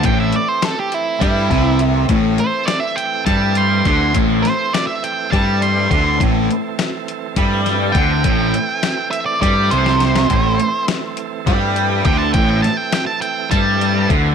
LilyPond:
<<
  \new Staff \with { instrumentName = "Lead electric guitar" } { \time 7/8 \key a \minor \tempo 4 = 102 g''16 e''16 d''16 c''16 a'16 g'16 e'8 e'4 r8 | r8 c''8 d''16 e''16 g''8 a''8 c'''8 c'''8 | r8 c''8 d''16 e''16 g''8 a''8 c'''8 c'''8 | r2. g''8~ |
g''4. e''16 d''16 d''8 c''4~ | c''4 r2 g''16 a''16 | g''16 g''16 a''16 g''16 g''16 a''16 g''8 a''4 r8 | }
  \new Staff \with { instrumentName = "Tonewheel organ" } { \time 7/8 \key a \minor <e a c' a'>2.~ <e a c' a'>8~ | <e a c' a'>2.~ <e a c' a'>8~ | <e a c' a'>2.~ <e a c' a'>8~ | <e a c' a'>2.~ <e a c' a'>8~ |
<e a c' a'>2.~ <e a c' a'>8~ | <e a c' a'>2.~ <e a c' a'>8~ | <e a c' a'>2.~ <e a c' a'>8 | }
  \new Staff \with { instrumentName = "Distorted electric guitar" } { \clef bass \time 7/8 \key a \minor a,8 r4. g8 c4 | a,8 r4. g4 d8 | a,8 r4. g4 d8 | a,8 r4. g4 d8 |
a,8 r4. g8 c4 | a,8 r4. g4 d8 | a,8 r4. g4 d8 | }
  \new Staff \with { instrumentName = "Fingered electric bass" } { \clef bass \time 7/8 \key a \minor a,,8 r4. g,8 c,4 | a,,8 r4. g,4 d,8 | a,,8 r4. g,4 d,8 | a,,8 r4. g,4 d,8 |
a,,8 r4. g,8 c,4 | a,,8 r4. g,4 d,8 | a,,8 r4. g,4 d,8 | }
  \new DrumStaff \with { instrumentName = "Drums" } \drummode { \time 7/8 <hh bd>8 hh8 <hh sn>8 hh8 <hh bd>8 <hh bd sn>8 hh8 | <hh bd>8 hh8 <hh sn>8 hh8 <hh bd sn>8 hh8 <hh bd sn>8 | <hh bd>8 <hh sn>8 <hh sn>8 hh8 <hh bd sn>8 hh8 <hh bd>8 | <hh bd>8 hh8 <hh sn>8 hh8 <hh bd>8 <hh sn>8 <hh bd>8 |
<hh bd>8 hh8 <hh sn>8 hh8 <hh bd sn>8 hh16 sn16 <hh sn>16 sn16 | <hh bd>8 hh8 <hh sn>8 hh8 <hh bd sn>8 hh8 <hh bd>8 | <hh bd>8 <hh sn>8 <hh sn>8 hh8 <hh bd>8 hh8 <hh bd>8 | }
>>